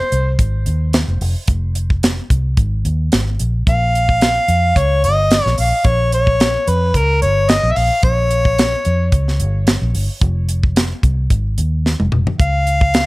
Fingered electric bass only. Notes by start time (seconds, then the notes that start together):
0.12 C2
0.39 G#1
0.67 D#2
1.08 F1
1.21 F1
1.48 F1
2.30 C2
2.57 G#1
2.85 D#2
3.13 G#1
3.40 A#1
3.67 A#1
4.48 F2
4.76 C#2
5.03 G1
5.46 A#1
5.59 A#1
5.85 A#1
6.68 F2
6.94 C#2
7.22 G1
7.63 A#1
7.77 A#1
8.03 A#1
8.86 F2
9.13 C#2
9.40 G1
9.82 A#1
9.95 G1
10.22 F1
11.04 C2
11.31 G#1
11.58 D#2
12.00 F1
12.12 F1
12.40 C#2